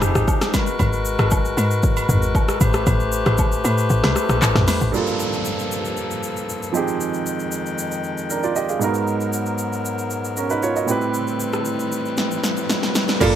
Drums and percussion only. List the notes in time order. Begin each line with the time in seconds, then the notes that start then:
0.02 cross-stick, mid tom, shaker
0.15 cross-stick, shaker
0.28 kick, low woodblock, shaker
0.41 cross-stick, snare, shaker
0.54 kick, snare, high agogo, shaker
0.67 shaker
0.79 kick, high agogo, shaker
0.93 shaker
1.05 shaker
1.19 cross-stick, high agogo, shaker
1.31 kick, low woodblock, shaker
1.45 shaker
1.58 high agogo, shaker
1.71 shaker
1.83 kick, shaker
1.97 high agogo, shaker
2.09 mid tom, shaker
2.22 shaker
2.35 kick, low woodblock, shaker
2.49 cross-stick, shaker
2.61 kick, high agogo, shaker
2.74 cross-stick, shaker
2.87 kick, high agogo, shaker
3.00 shaker
3.12 shaker
3.26 cross-stick, high agogo, shaker
3.38 kick, low woodblock, shaker
3.52 shaker
3.65 high agogo, shaker
3.78 shaker
3.90 shaker
4.04 cross-stick, snare, high agogo, shaker
4.16 cross-stick, shaker
4.29 cross-stick, shaker
4.42 clap, low woodblock, shaker
4.56 cross-stick, snare, mid tom, shaker
4.68 snare, open hi-hat, high agogo, shaker
4.81 shaker
4.94 shaker
5.07 shaker
5.20 shaker
5.33 shaker
5.45 shaker
5.59 shaker
5.72 shaker
5.85 shaker
5.97 shaker
6.11 shaker
6.23 shaker
6.37 shaker
6.49 shaker
6.63 shaker
6.75 shaker
6.88 shaker
7.01 shaker
7.14 shaker
7.26 shaker
7.40 shaker
7.52 shaker
7.66 shaker
7.78 shaker
7.92 shaker
8.04 shaker
8.18 shaker
8.30 shaker
8.43 shaker
8.56 shaker
8.69 shaker
8.81 shaker
8.94 shaker
9.07 shaker
9.21 shaker
9.33 shaker
9.46 shaker
9.58 shaker
9.73 shaker
9.85 shaker
9.99 shaker
10.11 shaker
10.25 shaker
10.37 shaker
10.50 shaker
10.63 shaker
10.76 shaker
10.88 shaker
11.01 shaker
11.14 shaker
11.28 shaker
11.40 shaker
11.53 cross-stick, shaker
11.65 shaker
11.80 shaker
11.92 shaker
12.05 shaker
12.17 snare, shaker
12.31 shaker
12.44 snare, shaker
12.57 shaker
12.70 snare, shaker
12.83 snare, shaker
12.95 snare, shaker
13.08 snare, shaker
13.21 kick, crash, high agogo, shaker